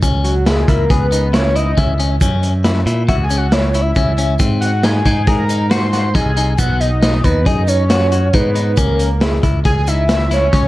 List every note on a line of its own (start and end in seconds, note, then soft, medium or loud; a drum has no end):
0.03 0.64 C#2 medium
0.03 0.34 C#4 medium
0.03 kick loud
0.03 closed hi-hat medium
0.03 shaker soft
0.24 0.44 F#4 medium
0.24 closed hi-hat medium
0.24 shaker soft
0.46 0.62 E4 medium
0.46 0.70 G#4 medium
0.46 snare loud
0.46 closed hi-hat medium
0.68 0.88 C#2 loud
0.68 0.84 E4 medium
0.68 0.91 A#4 medium
0.68 kick medium
0.68 closed hi-hat medium
0.68 shaker soft
0.90 1.73 C#2 medium
0.90 1.06 G#4 medium
0.90 1.35 B4 medium
0.90 kick medium
0.90 closed hi-hat medium
1.12 1.28 D#4 medium
1.12 closed hi-hat medium
1.12 shaker soft
1.33 1.49 E4 medium
1.33 1.57 C#5 medium
1.33 snare loud
1.33 closed hi-hat medium
1.33 shaker soft
1.55 1.71 E4 medium
1.55 1.78 D#5 medium
1.55 closed hi-hat medium
1.55 shaker soft
1.77 2.18 C#2 medium
1.77 1.93 C#4 medium
1.77 1.99 E5 medium
1.77 kick loud
1.77 closed hi-hat medium
2.00 2.15 C#4 medium
2.00 closed hi-hat medium
2.21 2.83 F#2 medium
2.21 2.52 C#4 medium
2.21 kick loud
2.21 closed hi-hat medium
2.21 shaker medium
2.43 closed hi-hat medium
2.43 shaker soft
2.64 2.80 E4 medium
2.64 snare medium
2.64 closed hi-hat medium
2.64 shaker soft
2.86 3.10 A#2 medium
2.86 3.02 E4 medium
2.86 closed hi-hat medium
2.86 shaker soft
3.08 3.92 C#2 medium
3.08 3.24 F#4 medium
3.08 3.15 E5 medium
3.08 kick medium
3.08 closed hi-hat medium
3.23 3.39 G#5 medium
3.30 3.46 C#4 medium
3.30 closed hi-hat medium
3.30 shaker soft
3.37 3.54 F#5 medium
3.52 3.68 E4 medium
3.52 3.83 C#5 medium
3.52 snare medium
3.52 closed hi-hat medium
3.74 3.90 E4 medium
3.74 closed hi-hat medium
3.74 shaker soft
3.81 4.47 E5 loud
3.95 4.37 C#2 medium
3.95 4.12 C#4 medium
3.95 kick loud
3.95 closed hi-hat medium
3.95 shaker soft
4.18 4.34 C#4 medium
4.18 closed hi-hat medium
4.18 shaker soft
4.39 5.01 G#2 medium
4.39 4.71 C4 medium
4.39 kick loud
4.39 closed hi-hat medium
4.39 shaker soft
4.61 4.85 F#5 medium
4.61 closed hi-hat medium
4.61 shaker soft
4.83 4.99 D#4 medium
4.83 5.28 G#5 loud
4.83 snare loud
4.83 closed hi-hat medium
5.06 5.26 G#2 medium
5.06 5.21 D#4 medium
5.06 kick medium
5.06 closed hi-hat medium
5.06 shaker soft
5.27 6.16 G#2 medium
5.27 5.43 G#4 medium
5.27 5.71 A#5 loud
5.27 kick loud
5.27 closed hi-hat medium
5.49 5.66 D#4 medium
5.49 closed hi-hat medium
5.49 shaker soft
5.70 5.87 F#4 medium
5.70 6.16 C6 loud
5.70 snare loud
5.70 closed hi-hat medium
5.70 shaker soft
5.93 6.09 F#4 medium
5.93 snare soft
5.93 closed hi-hat medium
5.93 shaker soft
6.14 6.55 C2 medium
6.14 6.31 D#4 medium
6.14 6.58 G#5 loud
6.14 kick loud
6.14 closed hi-hat medium
6.37 6.53 D#4 medium
6.37 closed hi-hat medium
6.58 7.20 B1 medium
6.58 6.90 B3 medium
6.58 6.82 F#5 loud
6.58 kick loud
6.58 closed hi-hat medium
6.58 shaker medium
6.80 7.25 D#5 loud
6.80 closed hi-hat medium
6.80 shaker soft
7.03 7.18 D#4 medium
7.03 snare loud
7.03 closed hi-hat medium
7.24 7.46 D#2 medium
7.24 7.40 D#4 medium
7.24 7.47 B4 medium
7.24 kick medium
7.24 closed hi-hat medium
7.24 shaker soft
7.46 8.30 F#2 medium
7.46 7.62 G#4 medium
7.46 7.70 D#5 loud
7.46 kick loud
7.46 closed hi-hat medium
7.68 7.84 D#4 medium
7.68 8.36 C#5 loud
7.68 closed hi-hat medium
7.68 shaker soft
7.90 8.06 F#4 medium
7.90 snare loud
7.90 closed hi-hat medium
7.90 shaker soft
8.12 8.28 F#4 medium
8.12 closed hi-hat medium
8.12 shaker soft
8.33 8.74 G#2 medium
8.33 8.50 D#4 medium
8.33 8.79 B4 medium
8.33 kick loud
8.33 closed hi-hat medium
8.55 8.71 D#4 medium
8.55 closed hi-hat medium
8.77 9.39 C#2 medium
8.77 9.09 C#4 medium
8.77 9.23 A#4 loud
8.77 kick loud
8.77 closed hi-hat medium
8.77 shaker medium
8.99 closed hi-hat medium
8.99 shaker soft
9.21 9.37 E4 medium
9.21 9.44 G#4 medium
9.21 snare loud
9.21 closed hi-hat medium
9.43 9.64 C#2 loud
9.43 9.59 E4 medium
9.43 kick medium
9.43 closed hi-hat medium
9.43 shaker soft
9.65 10.49 C#2 medium
9.65 9.81 G#4 medium
9.65 9.89 G#5 loud
9.65 kick loud
9.65 closed hi-hat medium
9.87 10.03 D#4 medium
9.87 10.09 E5 loud
9.87 closed hi-hat medium
9.87 shaker soft
10.09 10.25 E4 medium
10.09 10.30 E5 loud
10.09 snare loud
10.09 closed hi-hat medium
10.09 shaker soft
10.31 10.47 E4 medium
10.31 10.68 C#5 loud
10.31 snare soft
10.31 closed hi-hat medium
10.31 shaker soft
10.53 10.68 C#2 medium
10.53 10.68 C#4 medium
10.53 kick loud
10.53 closed hi-hat medium